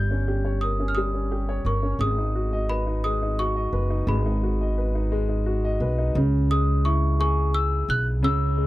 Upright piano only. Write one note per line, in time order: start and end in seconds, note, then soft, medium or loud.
0.00 0.96 G3 medium
0.11 0.78 C#4 soft
0.28 1.30 G4 soft
0.45 1.47 C#5 soft
0.63 1.64 A#4 soft
0.80 1.12 C#4 soft
0.97 1.97 G3 medium
1.14 1.81 C#4 soft
1.31 1.98 G4 medium
1.49 1.99 C#5 medium
1.65 1.99 A#4 medium
1.83 1.99 C#4 soft
2.00 3.03 G#3 medium
2.18 2.85 D#4 medium
2.35 3.38 F#4 soft
2.53 3.54 D#5 medium
2.70 3.71 B4 soft
2.87 3.21 D#4 soft
3.05 4.06 G#3 medium
3.22 3.89 D#4 soft
3.39 4.42 F#4 medium
3.56 4.60 D#5 medium
3.73 4.76 B4 medium
3.90 4.24 D#4 soft
4.08 5.10 G#3 medium
4.26 4.94 D#4 soft
4.43 5.44 F#4 soft
4.61 5.63 D#5 soft
4.78 5.79 B4 soft
4.95 5.27 D#4 soft
5.12 6.12 G#3 medium
5.29 5.97 D#4 soft
5.46 6.13 F#4 medium
5.64 6.14 D#5 medium
5.81 6.14 B4 medium
5.98 6.15 D#4 soft
6.16 8.19 C#3 medium
6.51 7.85 G#3 medium
6.85 8.19 E4 medium
7.20 8.53 G#4 medium
8.23 8.67 C#3 medium
8.57 8.67 G#3 medium